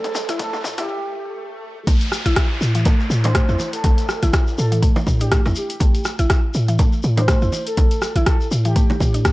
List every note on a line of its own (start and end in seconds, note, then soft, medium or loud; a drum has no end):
0.00 0.29 A4 loud
0.00 riser medium
0.04 closed hi-hat soft
0.04 mid tom medium
0.04 shekere soft
0.15 mid tom loud
0.15 shekere loud
0.29 0.36 A1 medium
0.29 0.38 E4 loud
0.29 closed hi-hat soft
0.29 mid tom medium
0.29 shekere soft
0.39 0.47 A3 medium
0.39 0.60 A4 medium
0.39 kick loud
0.39 closed hi-hat medium
0.39 mid tom loud
0.39 shekere medium
0.53 mid tom medium
0.53 shekere soft
0.64 0.89 A2 medium
0.64 mid tom loud
0.64 shekere loud
0.78 0.87 E4 loud
0.78 1.46 G4 loud
0.78 closed hi-hat soft
0.78 mid tom medium
0.78 shekere soft
0.89 swell medium
1.87 1.97 A1 loud
1.87 1.95 A3 medium
1.87 kick loud
1.87 closed hi-hat medium
1.87 downlifter medium
1.87 high bongo medium
1.87 shekere medium
2.01 closed hi-hat soft
2.01 shekere soft
2.12 cross-stick medium
2.12 shekere loud
2.26 2.33 A1 medium
2.26 2.35 E4 loud
2.26 closed hi-hat soft
2.26 shekere soft
2.36 2.50 E4 medium
2.36 kick loud
2.36 cross-stick loud
2.36 closed hi-hat medium
2.36 shekere medium
2.61 2.93 A2 medium
2.61 shekere loud
2.75 2.85 E3 medium
2.75 closed hi-hat soft
2.75 shekere soft
2.85 2.98 A3 loud
2.85 kick loud
2.85 closed hi-hat medium
2.85 high bongo loud
2.85 low bongo loud
2.85 shekere medium
3.00 shekere soft
3.10 3.42 A2 loud
3.10 shekere medium
3.24 3.30 D4 medium
3.24 3.70 C5 loud
3.24 closed hi-hat soft
3.24 high bongo medium
3.24 low bongo loud
3.24 shekere soft
3.35 3.47 A3 medium
3.35 kick loud
3.35 cross-stick loud
3.35 closed hi-hat medium
3.35 shekere medium
3.49 3.56 E2 loud
3.49 3.55 E4 medium
3.49 shekere soft
3.59 low bongo medium
3.59 shekere medium
3.73 4.22 A4 loud
3.73 closed hi-hat soft
3.73 shekere soft
3.84 3.94 A1 loud
3.84 3.92 A3 medium
3.84 kick loud
3.84 closed hi-hat medium
3.84 high bongo medium
3.84 shekere medium
3.98 closed hi-hat soft
3.98 shekere soft
4.09 cross-stick medium
4.09 shekere medium
4.23 4.30 A1 medium
4.23 4.32 E4 loud
4.23 closed hi-hat soft
4.23 low bongo medium
4.23 shekere soft
4.33 4.46 E4 medium
4.33 kick loud
4.33 cross-stick loud
4.33 closed hi-hat medium
4.33 shekere medium
4.47 shekere soft
4.58 4.90 A2 medium
4.58 4.78 A4 loud
4.58 shekere loud
4.72 4.81 E3 medium
4.72 closed hi-hat soft
4.72 shekere soft
4.82 4.95 A3 loud
4.82 kick loud
4.82 closed hi-hat medium
4.82 shekere medium
4.96 high bongo medium
4.96 low bongo loud
4.96 shekere soft
5.07 5.39 A2 loud
5.07 kick medium
5.07 low bongo medium
5.07 shekere medium
5.20 5.27 D4 medium
5.20 5.40 G4 loud
5.20 closed hi-hat soft
5.20 shekere soft
5.32 5.44 A3 medium
5.32 kick loud
5.32 cross-stick loud
5.32 closed hi-hat medium
5.32 shekere medium
5.46 5.53 E2 medium
5.46 5.51 E4 medium
5.46 high bongo medium
5.46 low bongo medium
5.46 shekere soft
5.56 6.06 G4 medium
5.56 shekere medium
5.70 closed hi-hat medium
5.70 shekere soft
5.80 5.90 A1 loud
5.80 5.88 A3 medium
5.80 kick loud
5.80 closed hi-hat medium
5.80 high bongo medium
5.80 shekere soft
5.95 closed hi-hat soft
5.95 shekere soft
6.05 cross-stick medium
6.05 shekere loud
6.19 6.27 A1 medium
6.19 6.29 E4 loud
6.19 closed hi-hat soft
6.19 shekere soft
6.30 6.43 E4 medium
6.30 kick loud
6.30 cross-stick loud
6.30 closed hi-hat medium
6.30 shekere medium
6.54 6.86 A2 medium
6.54 shekere loud
6.68 6.78 E3 medium
6.68 closed hi-hat soft
6.68 shekere soft
6.79 6.92 A3 loud
6.79 kick loud
6.79 closed hi-hat medium
6.79 high bongo loud
6.79 low bongo medium
6.79 shekere medium
6.92 shekere soft
7.03 7.35 A2 loud
7.03 shekere loud
7.17 7.23 D4 medium
7.17 7.64 C5 medium
7.17 closed hi-hat soft
7.17 high bongo medium
7.17 low bongo loud
7.17 shekere soft
7.28 7.41 A3 medium
7.28 kick loud
7.28 cross-stick loud
7.28 closed hi-hat medium
7.28 shekere medium
7.42 7.50 E2 medium
7.42 7.48 E4 medium
7.42 shekere soft
7.52 low bongo medium
7.52 shekere loud
7.67 8.16 A4 loud
7.67 closed hi-hat soft
7.67 shekere soft
7.77 7.87 A1 loud
7.77 7.85 A3 medium
7.77 kick loud
7.77 closed hi-hat medium
7.77 high bongo medium
7.77 shekere medium
7.91 closed hi-hat soft
7.91 shekere soft
8.02 cross-stick medium
8.02 shekere loud
8.16 8.23 A1 medium
8.16 8.25 E4 loud
8.16 closed hi-hat soft
8.16 low bongo medium
8.16 shekere soft
8.26 8.40 E4 medium
8.26 8.47 A4 medium
8.26 kick loud
8.26 cross-stick loud
8.26 closed hi-hat medium
8.26 shekere medium
8.41 shekere soft
8.51 8.83 A2 medium
8.51 shekere loud
8.65 8.75 E3 medium
8.65 9.32 G4 loud
8.65 closed hi-hat soft
8.65 shekere soft
8.76 8.88 A3 loud
8.76 kick loud
8.76 closed hi-hat medium
8.76 shekere medium
8.90 high bongo medium
8.90 low bongo loud
8.90 shekere soft
9.00 9.32 A2 loud
9.00 kick medium
9.00 low bongo loud
9.00 shekere medium
9.14 9.20 D4 medium
9.14 closed hi-hat soft
9.14 shekere soft
9.25 9.32 A3 medium
9.25 kick loud
9.25 cross-stick loud
9.25 closed hi-hat medium
9.25 shekere medium